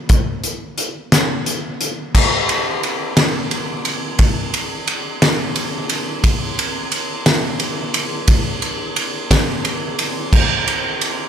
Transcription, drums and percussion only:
0.09 kick loud
0.09 closed hi-hat medium
0.44 closed hi-hat medium
0.78 closed hi-hat medium
1.12 snare medium
1.12 closed hi-hat medium
1.46 closed hi-hat medium
1.81 closed hi-hat medium
2.15 kick medium
2.15 crash loud
2.49 ride medium
2.83 ride medium
3.17 snare medium
3.17 ride medium
3.51 ride medium
3.85 ride medium
4.19 kick medium
4.19 ride medium
4.54 ride medium
4.87 ride medium
5.22 snare loud
5.22 ride medium
5.56 ride medium
5.89 ride medium
6.24 kick loud
6.24 ride medium
6.59 ride medium
6.92 ride medium
7.26 snare loud
7.26 ride medium
7.60 ride medium
7.94 ride medium
8.28 kick loud
8.28 ride medium
8.62 ride medium
8.96 ride medium
9.31 kick medium
9.31 snare loud
9.31 ride medium
9.65 ride medium
9.99 ride medium
10.33 kick loud
10.33 crash medium
10.68 ride medium
11.01 ride medium

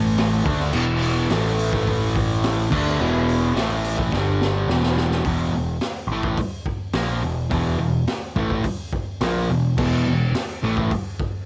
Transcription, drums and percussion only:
0.18 snare loud
0.18 open hi-hat medium
0.46 kick loud
0.46 open hi-hat medium
0.60 snare soft
0.73 crash loud
1.02 open hi-hat medium
1.30 snare loud
1.30 open hi-hat medium
1.58 open hi-hat medium
1.73 kick medium
1.73 snare soft
1.87 kick loud
1.87 open hi-hat medium
2.15 kick medium
2.15 open hi-hat medium
2.43 snare loud
2.43 open hi-hat medium
2.72 kick loud
2.72 crash loud
2.87 snare soft
3.28 open hi-hat medium
3.57 snare loud
3.57 open hi-hat medium
3.84 open hi-hat medium
3.98 kick medium
4.12 kick medium
4.12 snare medium
4.41 snare medium
4.69 snare loud
4.83 snare medium
4.98 snare loud
5.11 snare medium
5.25 kick loud
5.25 open hi-hat medium
5.81 snare loud
5.81 open hi-hat medium
6.23 kick medium
6.37 kick medium
6.37 open hi-hat medium
6.66 kick medium
6.93 snare loud
6.93 open hi-hat medium
7.51 kick loud
7.51 open hi-hat medium
8.07 snare loud
8.07 open hi-hat medium
8.36 kick medium
8.50 kick medium
8.64 kick loud
8.64 open hi-hat medium
8.93 kick medium
9.21 snare loud
9.21 open hi-hat medium
9.78 kick loud
9.78 crash loud
10.34 snare loud
10.34 open hi-hat medium
10.77 kick medium
10.91 kick medium
10.91 open hi-hat medium
11.20 kick medium

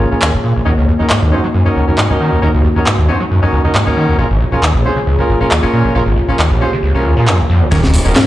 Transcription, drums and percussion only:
0.22 clap loud
1.10 clap loud
1.98 clap medium
2.86 clap medium
3.75 clap medium
4.63 clap medium
5.51 clap medium
6.39 clap medium
7.28 clap medium
7.72 kick loud
7.72 crash medium
7.72 ride loud
7.72 tambourine soft
7.83 snare soft
7.83 tambourine soft
7.93 open hi-hat medium
7.93 ride medium
7.93 tambourine medium
7.93 muted conga medium
7.93 high conga medium
8.05 tambourine soft
8.05 low conga loud
8.16 snare loud
8.16 clap loud
8.16 ride medium
8.16 tambourine soft

